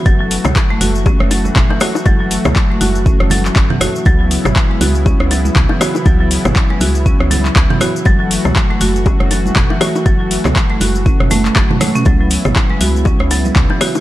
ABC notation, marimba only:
X:1
M:4/4
L:1/16
Q:"Swing 16ths" 1/4=120
K:F#m
V:1 name="Marimba" clef=bass
F, F, z3 A, F z C z F, z2 E, F z | F, F, z3 A, F z C z F, z2 E, F z | F, F, z3 G, F z C z F, z2 E, F z | F, F, z3 G, F z C z F, z2 E, F z |
F, F, z3 A, F z C z F, z2 E, F z | F, F, z3 A, F z C z A, z F, z A, C | F, F, z3 G, F z C z F, z2 E, F z |]